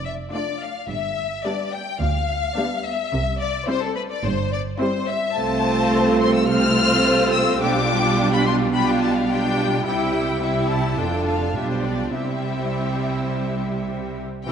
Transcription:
Already playing: double bass section F1, cello section F2
0.05 violin section E5
0.34 viola section A3 D4, violin section F4 D5
0.61 violin section F5
0.89 double bass section G1, cello section G2, violin section E5
1.45 viola section G3 B3, violin section D4 D5
1.73 violin section G5
2.01 cello section D2, double bass section D2, violin section F5
2.57 viola section G3 B3, violin section D4 D5
2.85 violin section E5
3.13 double bass section C2, cello section C3
3.40 violin section D5
3.68 viola section G3 C4, violin section E4 C5
3.83 violin section A4
3.96 violin section B4
4.11 violin section D5
4.24 double bass section G1, cello section G2, violin section C5
4.53 violin section D5
4.80 viola section G3 C4, violin section E4 C5
5.09 violin section E5
5.36 double bass section C2, cello section C3, viola section A3 C4, violin section F4 C5 A5
6.21 violin section C6
6.36 violin section E6
6.49 viola section A3 C4, violin section F4 C5 F6
7.34 violin section E6
7.61 double bass section B1, cello section B2, viola section G3 D4, violin section F4 G4 D6
8.33 violin section B5
8.46 violin section C6
8.73 viola section G3 D4, violin section F4 G4 B5
8.89 violin section G5
9.02 violin section A5
9.16 violin section F5
9.28 viola section G3 D4, violin section F4 G4 G5
9.85 double bass section C2, cello section C3, viola section G3 E4, violin section E4 G4 G5
10.42 viola section G3 E4, violin section E4 G4 E5
10.70 violin section A5
10.98 double bass section F1, cello section F2, viola section D3 D4, violin section F4 A4 G5
11.27 violin section F5
11.56 double bass section B1, cello section B2, viola section G3 D4, violin section F4 G4 E5
11.70 violin section C5
11.85 violin section D5
12.14 double bass section C2, cello section C3, viola section G3 C4, violin section E4 G4 E5
14.46 double bass section C2, cello section C3, viola section E3 C4, violin section G4 G5

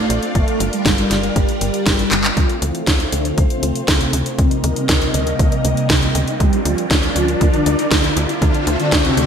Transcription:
Already playing: analog polysynth A3, string machine C4 D4 F4 C5 D5
0.10 analog synth bass A#1, closed hi-hat
0.23 closed hi-hat
0.35 analog synth bass G1, string machine G3 A#4, analog polysynth A3, kick, closed hi-hat
0.48 closed hi-hat
0.60 analog synth bass G1, closed hi-hat
0.73 analog polysynth G3, closed hi-hat
0.85 analog synth bass G1, kick, snare, closed hi-hat
0.98 analog polysynth G3, closed hi-hat
1.11 analog synth bass G1, snare, closed hi-hat
1.23 analog polysynth G3, closed hi-hat
1.36 analog synth bass G1, kick, closed hi-hat
1.49 closed hi-hat
1.61 analog synth bass G1, closed hi-hat
1.74 closed hi-hat
1.86 analog synth bass G1, kick, snare, closed hi-hat
1.99 closed hi-hat
2.12 analog synth bass G1, clap, closed hi-hat
2.24 clap, closed hi-hat
2.37 analog synth bass D2, analog polysynth F3 F4, string machine A3 C4 F4 C5 F5, kick, closed hi-hat, riser
2.50 closed hi-hat
2.62 analog synth bass D2, analog polysynth E3 E4, closed hi-hat
2.75 closed hi-hat
2.87 analog synth bass D2, kick, snare, closed hi-hat
3.00 closed hi-hat
3.12 analog synth bass D2, analog polysynth D3 D4, closed hi-hat
3.25 closed hi-hat
3.38 analog synth bass D2, kick, closed hi-hat
3.50 analog polysynth C3 C4, closed hi-hat
3.63 analog synth bass D2, closed hi-hat
3.75 closed hi-hat
3.88 analog synth bass D2, analog polysynth C3 C4, kick, snare, closed hi-hat
4.01 closed hi-hat
4.13 analog synth bass D2, closed hi-hat
4.26 closed hi-hat
4.38 analog synth bass D2, analog polysynth C3 C4, string machine G3 A#3 D#4 A#4 D#5, kick, closed hi-hat
4.51 closed hi-hat
4.64 analog synth bass D2, closed hi-hat
4.76 analog polysynth C3 C4, closed hi-hat
4.89 analog synth bass D2, kick, snare, closed hi-hat
5.02 analog polysynth C3 C4, closed hi-hat
5.14 analog synth bass D2, closed hi-hat
5.27 analog polysynth C3, closed hi-hat
5.39 analog synth bass D2, kick, closed hi-hat
5.52 closed hi-hat
5.65 analog synth bass D2, closed hi-hat
5.77 closed hi-hat
5.90 analog synth bass D2, kick, snare, closed hi-hat
6.02 closed hi-hat
6.15 analog synth bass D2, closed hi-hat
6.28 closed hi-hat
6.40 analog synth bass D2, analog polysynth G3 G4, string machine D4 F4 A#4 D5, kick, closed hi-hat
6.53 closed hi-hat
6.65 analog synth bass D2, analog polysynth F3 F4, closed hi-hat
6.78 closed hi-hat
6.91 analog synth bass D2, kick, snare, closed hi-hat
7.03 closed hi-hat
7.16 analog synth bass D2, analog polysynth F3 F4, closed hi-hat
7.28 closed hi-hat
7.41 analog synth bass D2, kick, closed hi-hat
7.54 analog polysynth D3 D4, closed hi-hat
7.66 analog synth bass D2, closed hi-hat
7.79 closed hi-hat
7.91 analog synth bass D2, analog polysynth D3 D4, kick, snare, closed hi-hat
8.04 closed hi-hat
8.17 analog synth bass D2, closed hi-hat
8.29 closed hi-hat
8.42 analog synth bass D2, analog polysynth D3 D4, string machine C4 E4 C5 E5, kick, closed hi-hat
8.54 closed hi-hat
8.67 analog synth bass D2, closed hi-hat
8.80 analog polysynth D3 D4, closed hi-hat
8.92 analog synth bass D2, kick, snare, closed hi-hat
9.05 analog polysynth C3 C4, closed hi-hat
9.17 analog synth bass D2, closed hi-hat

